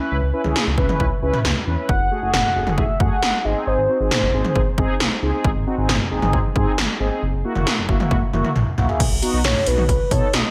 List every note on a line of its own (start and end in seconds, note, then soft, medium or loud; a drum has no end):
0.00 0.17 C#4 medium
0.00 0.17 E4 medium
0.00 0.17 B4 medium
0.11 0.21 C#2 loud
0.22 0.32 C#2 medium
0.33 0.42 C#4 medium
0.33 0.42 E4 medium
0.33 0.42 B4 loud
0.44 0.54 C#2 medium
0.44 0.61 C#4 medium
0.44 0.61 E4 medium
0.44 0.61 G#4 medium
0.44 mid tom medium
0.56 snare loud
0.67 0.77 C#2 medium
0.78 0.88 C#2 medium
0.78 0.86 C#4 medium
0.78 0.86 E4 medium
0.78 0.86 B4 loud
0.78 kick medium
0.89 1.06 C#4 medium
0.89 1.06 E4 medium
0.89 1.06 B4 medium
0.89 mid tom medium
1.00 1.10 C#2 medium
1.00 kick medium
1.22 1.32 C#2 loud
1.22 1.39 C#4 medium
1.22 1.39 E4 medium
1.22 1.39 B4 medium
1.34 mid tom medium
1.45 1.54 C#2 medium
1.45 snare loud
1.67 1.77 E2 medium
1.67 1.75 C#4 medium
1.67 1.75 E4 medium
1.67 1.75 B4 loud
1.78 1.89 C#4 medium
1.78 1.89 E4 medium
1.78 1.89 B4 medium
1.89 1.99 F#1 loud
1.89 2.30 F#5 loud
1.89 kick loud
2.00 2.10 F#1 medium
2.11 2.19 A3 medium
2.11 2.19 F#4 medium
2.11 2.19 G#4 medium
2.22 2.32 F#1 medium
2.22 2.39 A3 medium
2.22 2.39 F#4 medium
2.22 2.39 G#4 medium
2.33 2.43 F#1 loud
2.33 2.79 F#5 loud
2.33 snare loud
2.33 mid tom medium
2.56 2.65 F#1 loud
2.56 2.64 A3 medium
2.56 2.64 F#4 medium
2.56 2.64 G#4 medium
2.67 2.77 F#1 medium
2.67 2.83 A3 medium
2.67 2.83 F#4 medium
2.67 2.83 G#4 medium
2.67 mid tom medium
2.78 2.88 F#1 loud
2.78 3.02 E5 loud
2.78 kick medium
3.00 3.10 F#2 medium
3.00 3.17 A3 medium
3.00 3.17 F#4 medium
3.00 3.17 G#4 medium
3.00 3.46 F#5 loud
3.00 kick loud
3.22 3.32 F#1 loud
3.22 snare loud
3.45 3.54 G#1 loud
3.45 3.80 C4 medium
3.45 3.80 D#4 medium
3.45 3.80 G#4 medium
3.45 3.66 D#5 medium
3.67 3.77 G#1 loud
3.67 4.08 C5 loud
3.78 3.88 G#1 loud
3.89 3.97 C4 medium
3.89 3.97 D#4 medium
3.89 3.97 F#4 medium
4.00 4.10 G#1 medium
4.00 4.17 C4 medium
4.00 4.17 D#4 medium
4.00 4.17 G#4 medium
4.11 5.18 C5 medium
4.11 snare loud
4.11 mid tom loud
4.22 4.32 G#1 loud
4.33 4.43 G#1 loud
4.33 4.42 C4 medium
4.33 4.42 D#4 medium
4.33 4.42 G#4 medium
4.45 4.61 C4 medium
4.45 4.61 D#4 medium
4.45 4.61 G#4 medium
4.45 mid tom medium
4.56 4.65 G#1 loud
4.56 kick medium
4.78 4.88 G#1 loud
4.78 4.94 C4 medium
4.78 4.94 D#4 medium
4.78 4.94 G#4 medium
4.78 kick loud
5.00 5.10 C2 medium
5.00 snare loud
5.22 5.32 C#2 medium
5.22 5.31 C4 medium
5.22 5.31 D#4 medium
5.22 5.31 G#4 loud
5.33 5.50 C4 medium
5.33 5.50 D#4 medium
5.33 5.50 G#4 medium
5.45 5.54 G#1 loud
5.45 kick loud
5.56 5.65 G#1 medium
5.67 5.75 C4 medium
5.67 5.75 D#4 medium
5.67 5.75 F#4 loud
5.78 5.88 G#1 medium
5.78 5.94 C4 medium
5.78 5.94 D#4 medium
5.78 5.94 G#4 medium
5.89 5.99 G#1 loud
5.89 snare loud
5.89 mid tom medium
6.11 6.21 G#1 medium
6.11 6.19 C4 medium
6.11 6.19 D#4 medium
6.11 6.19 G#4 loud
6.22 6.32 G#1 medium
6.22 6.39 C4 medium
6.22 6.39 D#4 medium
6.22 6.39 G#4 medium
6.22 mid tom medium
6.33 6.43 G#1 loud
6.33 kick medium
6.56 6.65 G#2 loud
6.56 6.72 C4 medium
6.56 6.72 D#4 medium
6.56 6.72 G#4 loud
6.56 kick medium
6.78 6.88 G#1 medium
6.78 snare loud
7.00 7.10 G#1 medium
7.00 7.08 C4 medium
7.00 7.08 D#4 medium
7.00 7.08 G#4 loud
7.11 7.22 C4 medium
7.11 7.22 D#4 medium
7.11 7.22 G#4 medium
7.22 7.32 F#1 loud
7.33 7.43 F#1 medium
7.44 7.53 A#3 medium
7.44 7.53 E4 medium
7.44 7.53 F#4 loud
7.55 7.65 F#1 loud
7.55 7.72 A#3 medium
7.55 7.72 E4 medium
7.55 7.72 F#4 medium
7.55 mid tom medium
7.67 snare loud
7.78 7.88 F#1 medium
7.89 7.99 F#1 medium
7.89 7.97 A#3 medium
7.89 7.97 E4 medium
7.89 7.97 F#4 loud
7.89 kick medium
8.00 8.17 A#3 medium
8.00 8.17 E4 medium
8.00 8.17 F#4 medium
8.00 mid tom medium
8.11 8.21 F#1 loud
8.11 kick medium
8.11 high tom medium
8.33 8.43 F#1 loud
8.33 8.50 A#3 medium
8.33 8.50 E4 medium
8.33 8.50 F#4 loud
8.33 mid tom medium
8.45 mid tom medium
8.56 8.65 A#1 medium
8.56 mid tom medium
8.78 8.88 B1 medium
8.78 8.86 A#3 medium
8.78 8.86 E4 medium
8.78 8.86 F#4 medium
8.78 floor tom medium
8.89 9.00 A#3 medium
8.89 9.00 E4 medium
8.89 9.00 G#4 medium
8.89 floor tom medium
9.00 9.10 B1 loud
9.00 kick loud
9.00 closed hi-hat medium
9.00 crash medium
9.11 9.21 B1 medium
9.22 9.39 B3 medium
9.22 9.39 D#4 medium
9.22 9.39 F#4 loud
9.22 closed hi-hat medium
9.33 9.43 B1 loud
9.44 9.54 B1 loud
9.44 9.68 C#5 medium
9.44 snare loud
9.44 closed hi-hat medium
9.44 mid tom medium
9.67 9.77 B1 loud
9.67 9.83 B3 medium
9.67 9.83 D#4 medium
9.67 9.83 F#4 medium
9.67 9.88 B4 medium
9.67 closed hi-hat medium
9.78 9.88 B1 medium
9.78 mid tom medium
9.89 9.99 B1 loud
9.89 10.13 B4 medium
9.89 kick medium
9.89 closed hi-hat medium
10.11 10.21 B2 loud
10.11 10.28 B3 medium
10.11 10.28 D#4 medium
10.11 10.28 A4 medium
10.11 10.35 C#5 medium
10.11 kick loud
10.11 closed hi-hat medium
10.33 10.43 B1 loud
10.33 10.51 D#5 loud
10.33 snare loud
10.33 closed hi-hat medium